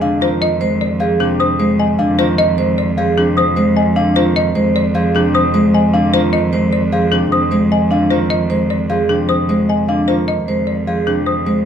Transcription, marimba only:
0.22 0.47 C5 loud
0.42 0.67 D#5 loud
0.81 1.06 D5 medium
1.20 1.46 G#4 medium
1.40 1.65 C5 medium
1.80 2.05 G#5 medium
2.19 2.44 C5 loud
2.38 2.64 D#5 loud
2.78 3.04 D5 medium
3.18 3.43 G#4 medium
3.38 3.63 C5 medium
3.77 4.02 G#5 medium
4.16 4.42 C5 loud
4.36 4.61 D#5 loud
4.76 5.01 D5 medium
5.16 5.41 G#4 medium
5.35 5.60 C5 medium
5.74 6.00 G#5 medium
6.14 6.39 C5 loud
6.33 6.59 D#5 loud
6.73 6.98 D5 medium
7.12 7.38 G#4 medium
7.32 7.58 C5 medium
7.72 7.97 G#5 medium
8.10 8.36 C5 loud
8.30 8.56 D#5 loud
8.70 8.96 D5 medium
9.09 9.35 G#4 medium
9.29 9.55 C5 medium
9.70 9.95 G#5 medium
10.08 10.34 C5 medium
10.28 10.53 D#5 medium
10.67 10.93 D5 medium
11.07 11.32 G#4 medium
11.26 11.52 C5 medium

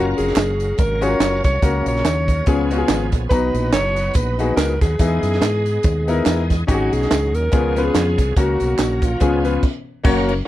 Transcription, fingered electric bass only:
0.00 0.15 F#1 loud
0.18 0.34 F1 medium
0.36 0.72 F#1 loud
0.79 1.14 G#1 medium
1.20 1.40 F#1 medium
1.44 1.60 C2 medium
1.62 1.83 C#2 medium
1.86 2.02 A#1 medium
2.04 2.40 D#2 medium
2.47 2.83 C#2 loud
2.89 3.09 G#1 medium
3.13 3.28 A#1 medium
3.31 3.51 B1 medium
3.54 3.70 A#1 medium
3.73 4.09 F#1 medium
4.15 4.51 A#1 medium
4.57 4.77 C#2 medium
4.81 4.97 D#2 medium
4.99 5.20 E2 loud
5.23 5.39 F#2 medium
5.42 5.77 G#2 medium
5.84 6.20 D#2 medium
6.26 6.62 E2 loud
6.68 6.89 G#1 medium
6.92 7.08 B1 medium
7.11 7.34 C#2 loud
7.34 7.50 D#2 medium
7.53 7.88 C#2 loud
7.95 8.15 F2 medium
8.19 8.34 C2 medium
8.36 8.57 C#2 loud
8.61 8.76 B1 medium
8.79 9.14 A#1 medium
9.21 9.57 C#2 medium
10.05 10.40 F#1 medium

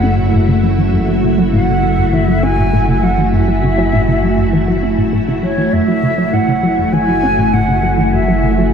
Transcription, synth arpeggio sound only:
0.03 0.14 C#4 medium
0.18 0.25 A2 medium
0.33 0.40 A2 medium
0.48 0.55 C#3 medium
0.63 0.74 F#3 medium
0.78 0.89 E3 medium
0.93 1.04 F#2 medium
1.08 1.22 F#3 medium
1.23 1.37 C#3 medium
1.38 1.49 F#3 medium
1.53 1.60 A2 medium
1.68 1.75 C#3 medium
1.83 1.94 F#3 medium
1.98 2.12 F#2 medium
2.13 2.24 E3 medium
2.28 2.42 F#3 medium
2.43 2.54 C#4 medium
2.58 2.65 A2 medium
2.73 2.80 A2 medium
2.88 2.95 C#3 medium
3.03 3.14 F#3 medium
3.18 3.29 E3 medium
3.33 3.44 F#2 medium
3.48 3.62 F#3 medium
3.63 3.77 C#3 medium
3.78 3.89 F#3 medium
3.93 4.00 A2 medium
4.08 4.15 C#3 medium
4.23 4.34 F#3 medium
4.38 4.52 F#2 medium
4.53 4.64 E3 medium
4.68 4.82 F#3 medium
4.83 4.94 C#4 medium
4.98 5.05 A2 medium
5.13 5.20 A2 loud
5.28 5.35 C#3 medium
5.43 5.54 F#3 medium
5.58 5.69 E3 medium
5.73 5.84 F#2 medium
5.88 6.02 F#3 medium
6.03 6.17 C#3 medium
6.18 6.29 F#3 medium
6.33 6.40 A2 medium
6.48 6.55 C#3 medium
6.63 6.74 F#3 medium
6.78 6.92 F#2 medium
6.93 7.04 E3 medium
7.08 7.22 F#3 medium
7.23 7.34 C#4 medium
7.38 7.45 A2 medium
7.53 7.60 A2 loud
7.68 7.75 C#3 medium
7.83 7.90 F#3 medium
7.98 8.09 E3 medium
8.13 8.24 F#2 medium
8.28 8.42 F#3 medium
8.43 8.57 C#3 medium
8.58 8.69 F#3 medium

